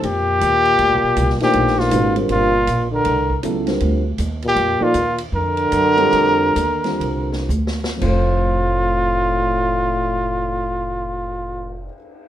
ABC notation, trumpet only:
X:1
M:4/4
L:1/8
Q:"Swing" 1/4=154
K:Fmix
V:1 name="Trumpet"
G6- G G- | G F2 z F3 B- | B2 z4 z G- | G F2 z B4- |
B6 z2 | F8- | F8 |]